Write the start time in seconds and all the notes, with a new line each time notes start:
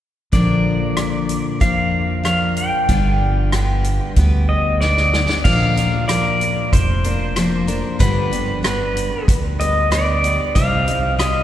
0.32 A#1 A#2 D3 F3 A#3 D4 A#4 D5, kick, closed hi-hat
0.97 cross-stick, closed hi-hat
1.29 closed hi-hat
1.60 F2 F3 A#3 D4 A#4 F5, kick, closed hi-hat
2.23 F3 A#3 D4 A#4 F5, cross-stick, closed hi-hat
2.56 G5, closed hi-hat
2.89 G1 G2 D3 G3 B3 D4 B4, kick, closed hi-hat
3.52 G3 B3 D4 B4, cross-stick, closed hi-hat
3.84 closed hi-hat
4.16 D2 G3 B3 B4, kick, closed hi-hat
4.49 D#5
4.81 G3 B3 D4 B4 D5, snare
4.97 snare
5.14 snare
5.29 snare
5.44 A#1 A#2 D3 F3 A#3 D4 A#4 F5, kick, crash
5.76 F3 A#3 D4 A#4, closed hi-hat
6.08 F3 A#3 D4 A#4 D5, cross-stick, closed hi-hat
6.41 closed hi-hat
6.73 F1 C5, kick, closed hi-hat
7.04 F3 A#3 D4 A#4, closed hi-hat
7.36 F3 A#3 D4 A#4, cross-stick, closed hi-hat
7.67 F3 A#3 D4 A#4, closed hi-hat
7.99 G1 G2 D3 G3 B3 D4 G4 B4, kick, closed hi-hat
8.31 G3 B3 D4 G4, closed hi-hat
8.63 G3 B3 D4 G4 B4, cross-stick, closed hi-hat
8.97 closed hi-hat
9.28 D2, kick, closed hi-hat
9.59 G3 B3 G4 D#5, closed hi-hat
9.91 G3 B3 D4 G4 D5, cross-stick, closed hi-hat
10.23 G3 B3 D4 G4, closed hi-hat
10.55 C2 C3 G3 C4 D#4 G4 F5, kick, closed hi-hat
10.87 C4 D#4 G4, closed hi-hat
11.18 G3 C4 D#4 G4 D#5, cross-stick, closed hi-hat